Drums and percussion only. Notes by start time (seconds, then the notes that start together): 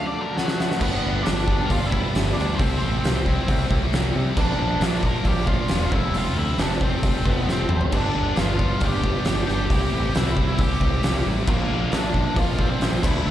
0.38 snare
0.48 snare
0.60 snare
0.71 snare
0.81 kick, crash
1.26 snare, open hi-hat
1.39 snare
1.48 kick
1.70 kick, open hi-hat
1.92 kick
2.15 snare, open hi-hat
2.39 snare
2.60 kick, open hi-hat
3.04 snare, open hi-hat
3.26 kick
3.48 kick, open hi-hat
3.71 kick
3.93 snare, open hi-hat
4.37 kick, crash
4.81 snare, open hi-hat
4.92 snare
5.03 kick
5.25 kick, open hi-hat
5.47 kick
5.68 snare, open hi-hat
5.92 kick
6.14 open hi-hat
6.58 snare, open hi-hat
6.71 snare
6.81 kick
7.03 kick, open hi-hat
7.26 kick
7.49 snare
7.69 mid tom
7.81 floor tom
7.92 kick, crash
8.36 snare, open hi-hat
8.59 kick
8.80 kick, open hi-hat
9.04 kick
9.25 snare, open hi-hat
9.49 snare
9.70 kick, open hi-hat
10.14 snare, open hi-hat
10.27 snare
10.37 kick
10.58 kick, open hi-hat
10.81 kick
11.03 snare, open hi-hat
11.47 kick, crash
11.92 snare, open hi-hat
12.04 snare
12.14 kick
12.36 kick, open hi-hat
12.59 kick
12.81 snare, open hi-hat
13.03 kick, snare, crash